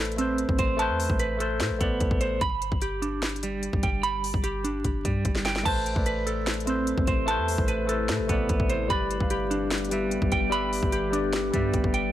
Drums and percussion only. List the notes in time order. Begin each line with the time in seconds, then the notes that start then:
0.05 closed hi-hat
0.12 closed hi-hat
0.18 closed hi-hat
0.38 closed hi-hat
0.49 kick
0.59 kick, closed hi-hat
0.79 closed hi-hat
1.00 open hi-hat
1.10 kick
1.19 closed hi-hat
1.40 closed hi-hat
1.60 snare, closed hi-hat
1.81 kick, closed hi-hat
2.00 kick, closed hi-hat
2.11 kick
2.21 closed hi-hat
2.41 kick, closed hi-hat
2.62 closed hi-hat
2.72 kick
2.82 closed hi-hat
3.02 closed hi-hat
3.22 snare, closed hi-hat
3.29 closed hi-hat
3.36 closed hi-hat
3.43 closed hi-hat
3.63 closed hi-hat
3.73 kick
3.83 kick, closed hi-hat
4.03 closed hi-hat
4.24 open hi-hat
4.34 kick
4.44 closed hi-hat
4.65 closed hi-hat
4.84 kick, closed hi-hat
5.05 kick, closed hi-hat
5.25 kick, closed hi-hat
5.35 snare
5.45 snare, closed hi-hat
5.56 snare
5.66 kick, closed hi-hat, crash
5.86 closed hi-hat
5.96 kick
6.06 closed hi-hat
6.27 closed hi-hat
6.47 snare, closed hi-hat
6.54 closed hi-hat
6.60 closed hi-hat
6.67 closed hi-hat
6.87 closed hi-hat
6.98 kick
7.07 kick, closed hi-hat
7.28 closed hi-hat
7.48 open hi-hat
7.58 kick
7.68 closed hi-hat
7.89 closed hi-hat
8.09 snare, closed hi-hat
8.29 kick, closed hi-hat
8.49 kick, closed hi-hat
8.60 kick
8.69 closed hi-hat
8.90 kick, closed hi-hat
9.11 closed hi-hat
9.20 kick
9.30 closed hi-hat
9.51 closed hi-hat
9.71 snare, closed hi-hat
9.78 closed hi-hat
9.85 closed hi-hat
9.91 closed hi-hat
10.11 closed hi-hat
10.22 kick
10.32 kick, closed hi-hat
10.52 closed hi-hat
10.73 open hi-hat
10.83 kick
10.92 closed hi-hat
11.13 closed hi-hat
11.33 snare, closed hi-hat
11.54 kick, closed hi-hat
11.74 kick, closed hi-hat
11.84 kick
11.94 closed hi-hat